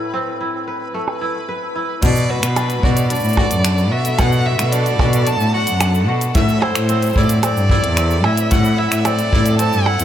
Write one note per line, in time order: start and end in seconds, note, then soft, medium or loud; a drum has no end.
0.00 2.08 A2 medium
0.00 0.93 A3 medium
0.00 0.12 C4 medium
0.00 0.40 E4 medium
0.00 0.66 B4 medium
0.00 2.04 B4 medium
0.00 2.01 B5 medium
0.00 shaker soft
0.14 2.08 C4 medium
0.27 shaker medium
0.40 1.21 E4 medium
0.40 shaker medium
0.54 shaker soft
0.67 1.48 B4 medium
0.81 shaker medium
0.94 2.94 A3 medium
0.94 shaker soft
1.08 percussion blips medium
1.08 shaker soft
1.21 1.75 E4 medium
1.35 shaker medium
1.49 2.72 B4 medium
1.49 shaker medium
1.62 shaker soft
1.76 3.32 E4 medium
1.89 shaker medium
2.02 4.18 B2 medium
2.02 2.35 B2 loud
2.02 10.04 A4 medium
2.02 2.31 D5 medium
2.02 10.04 B5 medium
2.02 kick loud
2.02 closed hi-hat medium
2.02 crash loud
2.02 shaker medium
2.16 shaker soft
2.29 2.83 F#4 medium
2.29 2.85 B4 medium
2.43 2.75 B2 medium
2.43 finger snap medium
2.43 closed hi-hat soft
2.43 shaker medium
2.56 3.10 D4 medium
2.56 closed hi-hat medium
2.56 percussion blips medium
2.56 shaker medium
2.70 closed hi-hat soft
2.70 shaker soft
2.83 3.16 B2 medium
2.83 3.37 F#4 medium
2.83 3.10 D5 medium
2.83 kick loud
2.97 closed hi-hat soft
2.97 shaker medium
3.10 3.64 D4 medium
3.10 3.93 D5 loud
3.10 closed hi-hat medium
3.10 shaker soft
3.15 shaker soft
3.20 shaker soft
3.24 3.41 A2 medium
3.24 shaker soft
3.29 shaker soft
3.33 shaker soft
3.37 3.91 F#4 medium
3.37 kick loud
3.37 percussion blips medium
3.51 3.93 F#2 loud
3.51 closed hi-hat soft
3.51 shaker medium
3.65 4.73 D4 medium
3.65 finger snap medium
3.65 closed hi-hat medium
3.65 shaker medium
3.78 shaker soft
3.91 4.08 B2 medium
3.91 4.45 F#4 medium
3.91 4.20 E5 loud
4.05 closed hi-hat soft
4.05 shaker medium
4.18 6.40 B2 medium
4.18 4.51 B2 loud
4.18 4.47 F#5 loud
4.18 kick loud
4.18 closed hi-hat medium
4.18 percussion blips medium
4.18 shaker medium
4.32 shaker soft
4.46 5.00 F#4 medium
4.46 4.74 E5 loud
4.59 4.92 B2 medium
4.59 finger snap medium
4.59 closed hi-hat soft
4.59 shaker medium
4.72 5.27 D4 medium
4.72 5.28 D5 loud
4.72 closed hi-hat medium
4.72 shaker medium
4.86 closed hi-hat soft
4.86 shaker soft
4.99 5.32 B2 loud
4.99 5.54 F#4 medium
4.99 kick loud
4.99 percussion blips medium
5.13 closed hi-hat soft
5.13 shaker medium
5.27 5.81 D4 medium
5.27 5.53 A5 loud
5.27 closed hi-hat medium
5.27 shaker medium
5.40 5.57 A2 medium
5.40 shaker soft
5.54 6.08 F#4 medium
5.54 6.04 F#5 loud
5.67 6.09 F#2 medium
5.67 closed hi-hat soft
5.67 shaker medium
5.81 7.49 D4 medium
5.81 finger snap medium
5.81 closed hi-hat medium
5.81 percussion blips medium
5.81 shaker medium
5.94 shaker soft
6.08 6.25 B2 medium
6.08 7.54 F#4 medium
6.21 closed hi-hat soft
6.21 shaker medium
6.35 8.50 A2 medium
6.35 6.67 A2 medium
6.35 6.64 E5 loud
6.35 kick loud
6.35 closed hi-hat medium
6.35 shaker medium
6.49 shaker soft
6.62 7.16 E4 medium
6.62 7.19 C5 medium
6.62 percussion blips medium
6.75 7.08 A2 medium
6.75 finger snap medium
6.75 closed hi-hat soft
6.75 shaker medium
6.89 7.43 C4 medium
6.89 closed hi-hat medium
6.89 shaker medium
7.03 closed hi-hat soft
7.03 shaker soft
7.06 shaker soft
7.09 shaker soft
7.13 7.48 A2 medium
7.13 kick medium
7.13 shaker soft
7.16 7.70 E4 medium
7.16 7.44 D5 medium
7.16 shaker soft
7.20 shaker soft
7.23 shaker soft
7.26 closed hi-hat soft
7.26 shaker soft
7.30 shaker medium
7.43 7.97 C4 medium
7.43 8.26 D5 loud
7.43 closed hi-hat medium
7.43 percussion blips medium
7.43 shaker medium
7.56 7.73 G2 medium
7.56 shaker soft
7.70 8.24 E4 medium
7.70 kick loud
7.84 8.26 E2 loud
7.84 closed hi-hat soft
7.97 9.05 C4 medium
7.97 finger snap medium
7.97 closed hi-hat medium
7.97 shaker medium
8.11 shaker soft
8.24 8.41 A2 medium
8.24 8.78 E4 medium
8.24 8.53 E5 medium
8.24 percussion blips medium
8.37 closed hi-hat soft
8.37 shaker medium
8.51 10.04 A2 medium
8.51 8.84 A2 loud
8.51 8.80 F#5 loud
8.51 kick loud
8.51 closed hi-hat medium
8.51 shaker medium
8.65 shaker soft
8.78 9.32 E4 medium
8.78 9.06 E5 medium
8.92 9.24 A2 medium
8.92 finger snap medium
8.92 closed hi-hat soft
8.92 shaker medium
9.05 9.59 C4 medium
9.05 9.58 D5 loud
9.05 closed hi-hat medium
9.05 percussion blips medium
9.05 shaker medium
9.19 closed hi-hat soft
9.19 shaker soft
9.33 9.65 A2 loud
9.33 9.86 E4 medium
9.33 kick loud
9.46 closed hi-hat soft
9.46 shaker medium
9.58 10.04 C4 medium
9.58 9.88 A5 loud
9.58 closed hi-hat medium
9.58 shaker medium
9.73 9.89 G2 medium
9.73 shaker soft
9.86 10.04 E4 medium
9.86 10.04 F#5 loud
9.86 percussion blips medium
10.00 10.04 E2 medium
10.00 closed hi-hat soft
10.00 shaker medium